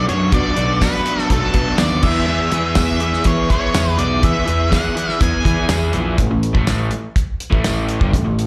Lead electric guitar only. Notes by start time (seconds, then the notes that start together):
0.09 C#5
0.34 D5
0.82 B4
1.32 A4
1.79 D5
2.03 E5
2.77 E5
3.27 C#5
3.51 C#5
3.99 D5
4.24 E5
4.72 F#5
5.22 G#5